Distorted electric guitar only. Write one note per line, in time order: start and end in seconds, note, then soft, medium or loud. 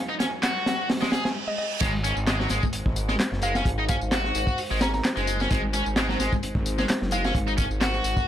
0.09 0.14 D#4 medium
0.20 0.25 C#4 loud
0.43 0.88 F#4 medium
1.01 1.09 G#3 loud
1.12 1.23 G#4 medium
1.81 1.90 G#3 medium
2.04 2.13 C#4 loud
2.27 2.37 G#3 loud
2.40 2.48 F#3 loud
2.51 2.63 G#3 medium
3.09 3.14 G#3 medium
3.43 3.54 G#3 medium
3.56 3.63 C#4 loud
3.79 3.83 D#4 medium
3.89 3.95 C#4 loud
4.12 4.57 F#4 medium
4.71 4.79 G#3 loud
4.81 4.87 C#4 loud
5.17 5.39 G#3 medium
5.40 5.48 C#4 medium
5.50 5.60 G#3 medium
5.74 5.83 C#4 loud
5.97 6.06 G#3 loud
6.09 6.17 F#3 loud
6.20 6.32 G#3 medium
6.78 6.83 G#3 medium
7.12 7.23 G#3 medium
7.25 7.32 C#4 loud
7.48 7.52 D#4 medium
7.58 7.64 C#4 loud
7.81 8.26 F#4 medium